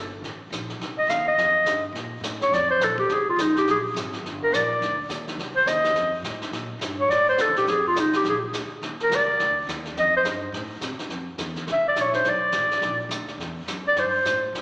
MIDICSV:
0, 0, Header, 1, 5, 480
1, 0, Start_track
1, 0, Tempo, 286396
1, 1334, Time_signature, 4, 2, 24, 8
1, 24500, End_track
2, 0, Start_track
2, 0, Title_t, "Clarinet"
2, 0, Program_c, 0, 71
2, 1651, Note_on_c, 0, 75, 73
2, 1842, Note_on_c, 0, 77, 72
2, 1868, Note_off_c, 0, 75, 0
2, 2117, Note_off_c, 0, 77, 0
2, 2145, Note_on_c, 0, 75, 84
2, 3115, Note_off_c, 0, 75, 0
2, 4063, Note_on_c, 0, 73, 76
2, 4256, Note_on_c, 0, 74, 84
2, 4281, Note_off_c, 0, 73, 0
2, 4525, Note_off_c, 0, 74, 0
2, 4539, Note_on_c, 0, 72, 89
2, 4762, Note_on_c, 0, 69, 76
2, 4787, Note_off_c, 0, 72, 0
2, 5007, Note_off_c, 0, 69, 0
2, 5017, Note_on_c, 0, 67, 79
2, 5246, Note_on_c, 0, 68, 81
2, 5271, Note_off_c, 0, 67, 0
2, 5499, Note_off_c, 0, 68, 0
2, 5525, Note_on_c, 0, 65, 74
2, 5718, Note_on_c, 0, 63, 66
2, 5743, Note_off_c, 0, 65, 0
2, 5976, Note_off_c, 0, 63, 0
2, 5998, Note_on_c, 0, 67, 80
2, 6152, Note_off_c, 0, 67, 0
2, 6215, Note_on_c, 0, 68, 70
2, 6364, Note_off_c, 0, 68, 0
2, 7436, Note_on_c, 0, 70, 79
2, 7611, Note_on_c, 0, 74, 82
2, 7636, Note_off_c, 0, 70, 0
2, 8362, Note_off_c, 0, 74, 0
2, 9329, Note_on_c, 0, 72, 85
2, 9512, Note_on_c, 0, 75, 75
2, 9537, Note_off_c, 0, 72, 0
2, 10271, Note_off_c, 0, 75, 0
2, 11745, Note_on_c, 0, 73, 75
2, 11911, Note_on_c, 0, 74, 89
2, 11936, Note_off_c, 0, 73, 0
2, 12190, Note_off_c, 0, 74, 0
2, 12219, Note_on_c, 0, 72, 87
2, 12427, Note_on_c, 0, 69, 74
2, 12452, Note_off_c, 0, 72, 0
2, 12688, Note_off_c, 0, 69, 0
2, 12701, Note_on_c, 0, 67, 82
2, 12914, Note_on_c, 0, 68, 79
2, 12940, Note_off_c, 0, 67, 0
2, 13172, Note_off_c, 0, 68, 0
2, 13204, Note_on_c, 0, 65, 69
2, 13406, Note_on_c, 0, 63, 65
2, 13431, Note_off_c, 0, 65, 0
2, 13657, Note_off_c, 0, 63, 0
2, 13680, Note_on_c, 0, 67, 79
2, 13831, Note_off_c, 0, 67, 0
2, 13900, Note_on_c, 0, 68, 70
2, 14046, Note_off_c, 0, 68, 0
2, 15137, Note_on_c, 0, 70, 77
2, 15342, Note_on_c, 0, 74, 83
2, 15367, Note_off_c, 0, 70, 0
2, 16063, Note_off_c, 0, 74, 0
2, 16748, Note_on_c, 0, 75, 91
2, 17006, Note_off_c, 0, 75, 0
2, 17040, Note_on_c, 0, 72, 90
2, 17136, Note_off_c, 0, 72, 0
2, 19653, Note_on_c, 0, 76, 73
2, 19881, Note_off_c, 0, 76, 0
2, 19917, Note_on_c, 0, 74, 82
2, 20140, Note_on_c, 0, 73, 73
2, 20165, Note_off_c, 0, 74, 0
2, 20347, Note_off_c, 0, 73, 0
2, 20357, Note_on_c, 0, 72, 77
2, 20589, Note_on_c, 0, 74, 77
2, 20614, Note_off_c, 0, 72, 0
2, 21998, Note_off_c, 0, 74, 0
2, 23260, Note_on_c, 0, 74, 82
2, 23454, Note_on_c, 0, 72, 69
2, 23479, Note_off_c, 0, 74, 0
2, 24198, Note_off_c, 0, 72, 0
2, 24500, End_track
3, 0, Start_track
3, 0, Title_t, "Upright bass"
3, 0, Program_c, 1, 32
3, 0, Note_on_c, 1, 31, 78
3, 353, Note_off_c, 1, 31, 0
3, 365, Note_on_c, 1, 33, 72
3, 835, Note_off_c, 1, 33, 0
3, 846, Note_on_c, 1, 34, 77
3, 1316, Note_off_c, 1, 34, 0
3, 1335, Note_on_c, 1, 36, 69
3, 1781, Note_off_c, 1, 36, 0
3, 1791, Note_on_c, 1, 39, 76
3, 2269, Note_off_c, 1, 39, 0
3, 2279, Note_on_c, 1, 41, 67
3, 2740, Note_off_c, 1, 41, 0
3, 2750, Note_on_c, 1, 43, 76
3, 3215, Note_off_c, 1, 43, 0
3, 3225, Note_on_c, 1, 46, 78
3, 3691, Note_off_c, 1, 46, 0
3, 3701, Note_on_c, 1, 45, 80
3, 4180, Note_off_c, 1, 45, 0
3, 4190, Note_on_c, 1, 41, 81
3, 4669, Note_off_c, 1, 41, 0
3, 4684, Note_on_c, 1, 34, 83
3, 5156, Note_off_c, 1, 34, 0
3, 5166, Note_on_c, 1, 36, 77
3, 5626, Note_off_c, 1, 36, 0
3, 5636, Note_on_c, 1, 35, 83
3, 6102, Note_off_c, 1, 35, 0
3, 6112, Note_on_c, 1, 34, 77
3, 6590, Note_off_c, 1, 34, 0
3, 6604, Note_on_c, 1, 32, 85
3, 7076, Note_off_c, 1, 32, 0
3, 7090, Note_on_c, 1, 31, 75
3, 7559, Note_off_c, 1, 31, 0
3, 7571, Note_on_c, 1, 34, 82
3, 8039, Note_off_c, 1, 34, 0
3, 8055, Note_on_c, 1, 38, 82
3, 8516, Note_off_c, 1, 38, 0
3, 8526, Note_on_c, 1, 39, 83
3, 8989, Note_off_c, 1, 39, 0
3, 8999, Note_on_c, 1, 36, 75
3, 9473, Note_off_c, 1, 36, 0
3, 9486, Note_on_c, 1, 39, 85
3, 9942, Note_off_c, 1, 39, 0
3, 9952, Note_on_c, 1, 41, 73
3, 10417, Note_off_c, 1, 41, 0
3, 10427, Note_on_c, 1, 45, 80
3, 10906, Note_off_c, 1, 45, 0
3, 10916, Note_on_c, 1, 46, 76
3, 11374, Note_off_c, 1, 46, 0
3, 11384, Note_on_c, 1, 43, 83
3, 11859, Note_off_c, 1, 43, 0
3, 11869, Note_on_c, 1, 45, 78
3, 12347, Note_off_c, 1, 45, 0
3, 12363, Note_on_c, 1, 38, 81
3, 12523, Note_off_c, 1, 38, 0
3, 12523, Note_on_c, 1, 34, 56
3, 12682, Note_off_c, 1, 34, 0
3, 12692, Note_on_c, 1, 33, 61
3, 12832, Note_off_c, 1, 33, 0
3, 12842, Note_on_c, 1, 41, 81
3, 13313, Note_off_c, 1, 41, 0
3, 13331, Note_on_c, 1, 36, 85
3, 13797, Note_off_c, 1, 36, 0
3, 13810, Note_on_c, 1, 34, 84
3, 14277, Note_off_c, 1, 34, 0
3, 14295, Note_on_c, 1, 38, 85
3, 14561, Note_off_c, 1, 38, 0
3, 14777, Note_on_c, 1, 39, 78
3, 15233, Note_off_c, 1, 39, 0
3, 15243, Note_on_c, 1, 36, 88
3, 15712, Note_off_c, 1, 36, 0
3, 15741, Note_on_c, 1, 38, 77
3, 16192, Note_off_c, 1, 38, 0
3, 16202, Note_on_c, 1, 39, 88
3, 16671, Note_off_c, 1, 39, 0
3, 16688, Note_on_c, 1, 41, 80
3, 17141, Note_off_c, 1, 41, 0
3, 17151, Note_on_c, 1, 43, 83
3, 17625, Note_off_c, 1, 43, 0
3, 17636, Note_on_c, 1, 45, 82
3, 18108, Note_off_c, 1, 45, 0
3, 18115, Note_on_c, 1, 48, 86
3, 18389, Note_off_c, 1, 48, 0
3, 18582, Note_on_c, 1, 41, 73
3, 19060, Note_off_c, 1, 41, 0
3, 19072, Note_on_c, 1, 40, 83
3, 19545, Note_off_c, 1, 40, 0
3, 19558, Note_on_c, 1, 36, 76
3, 20018, Note_off_c, 1, 36, 0
3, 20028, Note_on_c, 1, 34, 81
3, 20503, Note_off_c, 1, 34, 0
3, 20526, Note_on_c, 1, 35, 75
3, 20794, Note_off_c, 1, 35, 0
3, 20993, Note_on_c, 1, 33, 85
3, 21455, Note_off_c, 1, 33, 0
3, 21465, Note_on_c, 1, 34, 80
3, 21927, Note_off_c, 1, 34, 0
3, 21937, Note_on_c, 1, 38, 84
3, 22410, Note_off_c, 1, 38, 0
3, 22420, Note_on_c, 1, 40, 76
3, 22890, Note_off_c, 1, 40, 0
3, 22900, Note_on_c, 1, 42, 76
3, 23379, Note_off_c, 1, 42, 0
3, 23405, Note_on_c, 1, 43, 77
3, 23871, Note_off_c, 1, 43, 0
3, 23884, Note_on_c, 1, 45, 80
3, 24334, Note_off_c, 1, 45, 0
3, 24344, Note_on_c, 1, 38, 82
3, 24500, Note_off_c, 1, 38, 0
3, 24500, End_track
4, 0, Start_track
4, 0, Title_t, "Muted upright bass strokes"
4, 14584, Note_on_c, 9, 29, 38
4, 14751, Note_off_c, 9, 29, 0
4, 18406, Note_on_c, 9, 29, 36
4, 18573, Note_off_c, 9, 29, 0
4, 20806, Note_on_c, 9, 29, 36
4, 20974, Note_off_c, 9, 29, 0
4, 24500, End_track
5, 0, Start_track
5, 0, Title_t, "Drums"
5, 397, Note_on_c, 9, 25, 42
5, 397, Note_on_c, 9, 38, 36
5, 565, Note_off_c, 9, 38, 0
5, 872, Note_on_c, 9, 44, 52
5, 877, Note_on_c, 9, 38, 49
5, 1040, Note_off_c, 9, 44, 0
5, 1045, Note_off_c, 9, 38, 0
5, 1168, Note_on_c, 9, 38, 33
5, 1336, Note_off_c, 9, 38, 0
5, 1361, Note_off_c, 9, 25, 0
5, 1361, Note_on_c, 9, 25, 48
5, 1361, Note_on_c, 9, 38, 38
5, 1529, Note_off_c, 9, 38, 0
5, 1830, Note_on_c, 9, 44, 54
5, 1835, Note_on_c, 9, 38, 52
5, 1998, Note_off_c, 9, 44, 0
5, 2003, Note_off_c, 9, 38, 0
5, 2313, Note_off_c, 9, 25, 0
5, 2313, Note_on_c, 9, 25, 45
5, 2313, Note_on_c, 9, 38, 37
5, 2481, Note_off_c, 9, 38, 0
5, 2779, Note_on_c, 9, 44, 50
5, 2784, Note_on_c, 9, 38, 52
5, 2947, Note_off_c, 9, 44, 0
5, 2952, Note_off_c, 9, 38, 0
5, 3271, Note_off_c, 9, 25, 0
5, 3271, Note_on_c, 9, 25, 52
5, 3271, Note_on_c, 9, 38, 42
5, 3438, Note_off_c, 9, 38, 0
5, 3743, Note_on_c, 9, 44, 57
5, 3748, Note_on_c, 9, 38, 58
5, 3910, Note_off_c, 9, 44, 0
5, 3915, Note_off_c, 9, 38, 0
5, 4043, Note_on_c, 9, 38, 37
5, 4210, Note_off_c, 9, 38, 0
5, 4243, Note_off_c, 9, 25, 0
5, 4243, Note_on_c, 9, 25, 45
5, 4243, Note_on_c, 9, 38, 40
5, 4411, Note_off_c, 9, 38, 0
5, 4708, Note_on_c, 9, 44, 55
5, 4713, Note_on_c, 9, 38, 58
5, 4875, Note_off_c, 9, 44, 0
5, 4880, Note_off_c, 9, 38, 0
5, 4993, Note_on_c, 9, 36, 54
5, 5161, Note_off_c, 9, 36, 0
5, 5181, Note_off_c, 9, 25, 0
5, 5181, Note_on_c, 9, 25, 55
5, 5181, Note_on_c, 9, 38, 44
5, 5349, Note_off_c, 9, 38, 0
5, 5669, Note_on_c, 9, 44, 64
5, 5674, Note_on_c, 9, 38, 58
5, 5837, Note_off_c, 9, 44, 0
5, 5842, Note_off_c, 9, 38, 0
5, 5974, Note_on_c, 9, 38, 38
5, 6141, Note_off_c, 9, 38, 0
5, 6155, Note_off_c, 9, 25, 0
5, 6155, Note_on_c, 9, 25, 45
5, 6155, Note_on_c, 9, 38, 39
5, 6323, Note_off_c, 9, 38, 0
5, 6635, Note_on_c, 9, 44, 57
5, 6640, Note_on_c, 9, 38, 59
5, 6802, Note_off_c, 9, 44, 0
5, 6807, Note_off_c, 9, 38, 0
5, 6923, Note_on_c, 9, 38, 38
5, 7090, Note_off_c, 9, 38, 0
5, 7133, Note_off_c, 9, 25, 0
5, 7133, Note_on_c, 9, 25, 51
5, 7133, Note_on_c, 9, 38, 43
5, 7301, Note_off_c, 9, 38, 0
5, 7602, Note_on_c, 9, 44, 58
5, 7607, Note_on_c, 9, 38, 63
5, 7770, Note_off_c, 9, 44, 0
5, 7775, Note_off_c, 9, 38, 0
5, 8071, Note_off_c, 9, 25, 0
5, 8071, Note_on_c, 9, 25, 50
5, 8071, Note_on_c, 9, 38, 43
5, 8239, Note_off_c, 9, 38, 0
5, 8535, Note_on_c, 9, 44, 52
5, 8540, Note_on_c, 9, 38, 55
5, 8703, Note_off_c, 9, 44, 0
5, 8708, Note_off_c, 9, 38, 0
5, 8841, Note_on_c, 9, 38, 37
5, 9009, Note_off_c, 9, 38, 0
5, 9035, Note_off_c, 9, 25, 0
5, 9035, Note_on_c, 9, 25, 49
5, 9035, Note_on_c, 9, 38, 41
5, 9203, Note_off_c, 9, 38, 0
5, 9503, Note_on_c, 9, 44, 60
5, 9508, Note_on_c, 9, 38, 61
5, 9671, Note_off_c, 9, 44, 0
5, 9676, Note_off_c, 9, 38, 0
5, 9791, Note_on_c, 9, 38, 38
5, 9958, Note_off_c, 9, 38, 0
5, 9981, Note_off_c, 9, 25, 0
5, 9981, Note_on_c, 9, 25, 47
5, 9981, Note_on_c, 9, 38, 44
5, 10148, Note_off_c, 9, 38, 0
5, 10460, Note_on_c, 9, 44, 43
5, 10465, Note_on_c, 9, 38, 56
5, 10628, Note_off_c, 9, 44, 0
5, 10633, Note_off_c, 9, 38, 0
5, 10753, Note_on_c, 9, 38, 39
5, 10920, Note_off_c, 9, 38, 0
5, 10943, Note_off_c, 9, 25, 0
5, 10943, Note_on_c, 9, 25, 54
5, 10943, Note_on_c, 9, 38, 45
5, 11111, Note_off_c, 9, 38, 0
5, 11413, Note_on_c, 9, 44, 55
5, 11418, Note_on_c, 9, 38, 60
5, 11581, Note_off_c, 9, 44, 0
5, 11586, Note_off_c, 9, 38, 0
5, 11906, Note_off_c, 9, 25, 0
5, 11906, Note_on_c, 9, 25, 47
5, 11906, Note_on_c, 9, 38, 44
5, 12074, Note_off_c, 9, 38, 0
5, 12370, Note_on_c, 9, 44, 57
5, 12375, Note_on_c, 9, 38, 58
5, 12538, Note_off_c, 9, 44, 0
5, 12543, Note_off_c, 9, 38, 0
5, 12670, Note_on_c, 9, 38, 38
5, 12838, Note_off_c, 9, 38, 0
5, 12856, Note_off_c, 9, 25, 0
5, 12856, Note_on_c, 9, 25, 50
5, 12856, Note_on_c, 9, 38, 44
5, 13023, Note_off_c, 9, 38, 0
5, 13339, Note_on_c, 9, 44, 64
5, 13344, Note_on_c, 9, 38, 62
5, 13507, Note_off_c, 9, 44, 0
5, 13512, Note_off_c, 9, 38, 0
5, 13628, Note_on_c, 9, 38, 39
5, 13796, Note_off_c, 9, 38, 0
5, 13817, Note_off_c, 9, 25, 0
5, 13817, Note_on_c, 9, 25, 44
5, 13817, Note_on_c, 9, 38, 42
5, 13985, Note_off_c, 9, 38, 0
5, 14302, Note_on_c, 9, 44, 50
5, 14307, Note_on_c, 9, 38, 54
5, 14469, Note_off_c, 9, 44, 0
5, 14474, Note_off_c, 9, 38, 0
5, 14790, Note_off_c, 9, 25, 0
5, 14790, Note_on_c, 9, 25, 44
5, 14790, Note_on_c, 9, 38, 47
5, 14957, Note_off_c, 9, 38, 0
5, 15084, Note_on_c, 9, 38, 40
5, 15252, Note_off_c, 9, 38, 0
5, 15270, Note_on_c, 9, 44, 58
5, 15275, Note_on_c, 9, 38, 59
5, 15437, Note_off_c, 9, 44, 0
5, 15443, Note_off_c, 9, 38, 0
5, 15749, Note_off_c, 9, 25, 0
5, 15749, Note_on_c, 9, 25, 50
5, 15749, Note_on_c, 9, 38, 44
5, 15917, Note_off_c, 9, 38, 0
5, 16234, Note_on_c, 9, 44, 59
5, 16239, Note_on_c, 9, 38, 59
5, 16401, Note_off_c, 9, 44, 0
5, 16406, Note_off_c, 9, 38, 0
5, 16516, Note_on_c, 9, 38, 40
5, 16683, Note_off_c, 9, 38, 0
5, 16709, Note_off_c, 9, 25, 0
5, 16709, Note_on_c, 9, 25, 52
5, 16709, Note_on_c, 9, 38, 47
5, 16877, Note_off_c, 9, 38, 0
5, 17173, Note_on_c, 9, 44, 50
5, 17178, Note_on_c, 9, 38, 57
5, 17341, Note_off_c, 9, 44, 0
5, 17346, Note_off_c, 9, 38, 0
5, 17661, Note_off_c, 9, 25, 0
5, 17661, Note_on_c, 9, 25, 49
5, 17661, Note_on_c, 9, 38, 43
5, 17829, Note_off_c, 9, 38, 0
5, 18122, Note_on_c, 9, 44, 54
5, 18127, Note_on_c, 9, 38, 55
5, 18290, Note_off_c, 9, 44, 0
5, 18295, Note_off_c, 9, 38, 0
5, 18416, Note_on_c, 9, 38, 37
5, 18584, Note_off_c, 9, 38, 0
5, 18596, Note_off_c, 9, 25, 0
5, 18596, Note_on_c, 9, 25, 45
5, 18596, Note_on_c, 9, 38, 38
5, 18764, Note_off_c, 9, 38, 0
5, 19076, Note_on_c, 9, 44, 58
5, 19081, Note_on_c, 9, 38, 53
5, 19244, Note_off_c, 9, 44, 0
5, 19249, Note_off_c, 9, 38, 0
5, 19371, Note_on_c, 9, 38, 36
5, 19538, Note_off_c, 9, 38, 0
5, 19565, Note_off_c, 9, 25, 0
5, 19565, Note_on_c, 9, 25, 46
5, 19565, Note_on_c, 9, 38, 40
5, 19733, Note_off_c, 9, 38, 0
5, 20042, Note_on_c, 9, 44, 52
5, 20047, Note_on_c, 9, 38, 55
5, 20210, Note_off_c, 9, 44, 0
5, 20215, Note_off_c, 9, 38, 0
5, 20334, Note_on_c, 9, 38, 36
5, 20501, Note_off_c, 9, 38, 0
5, 20522, Note_off_c, 9, 25, 0
5, 20522, Note_on_c, 9, 25, 45
5, 20522, Note_on_c, 9, 38, 42
5, 20690, Note_off_c, 9, 38, 0
5, 20984, Note_on_c, 9, 44, 50
5, 20989, Note_on_c, 9, 38, 58
5, 21152, Note_off_c, 9, 44, 0
5, 21157, Note_off_c, 9, 38, 0
5, 21304, Note_on_c, 9, 38, 38
5, 21472, Note_off_c, 9, 38, 0
5, 21482, Note_off_c, 9, 25, 0
5, 21482, Note_on_c, 9, 25, 42
5, 21482, Note_on_c, 9, 38, 39
5, 21650, Note_off_c, 9, 38, 0
5, 21963, Note_on_c, 9, 44, 57
5, 21969, Note_on_c, 9, 38, 53
5, 22131, Note_off_c, 9, 44, 0
5, 22136, Note_off_c, 9, 38, 0
5, 22260, Note_on_c, 9, 38, 35
5, 22427, Note_off_c, 9, 38, 0
5, 22458, Note_off_c, 9, 25, 0
5, 22458, Note_on_c, 9, 25, 42
5, 22458, Note_on_c, 9, 38, 42
5, 22625, Note_off_c, 9, 38, 0
5, 22919, Note_on_c, 9, 44, 56
5, 22924, Note_on_c, 9, 38, 57
5, 23087, Note_off_c, 9, 44, 0
5, 23092, Note_off_c, 9, 38, 0
5, 23400, Note_off_c, 9, 25, 0
5, 23400, Note_on_c, 9, 25, 53
5, 23400, Note_on_c, 9, 38, 43
5, 23568, Note_off_c, 9, 38, 0
5, 23887, Note_on_c, 9, 44, 56
5, 23892, Note_on_c, 9, 38, 56
5, 24054, Note_off_c, 9, 44, 0
5, 24059, Note_off_c, 9, 38, 0
5, 24380, Note_off_c, 9, 25, 0
5, 24380, Note_on_c, 9, 25, 48
5, 24380, Note_on_c, 9, 38, 44
5, 24500, Note_off_c, 9, 25, 0
5, 24500, Note_off_c, 9, 38, 0
5, 24500, End_track
0, 0, End_of_file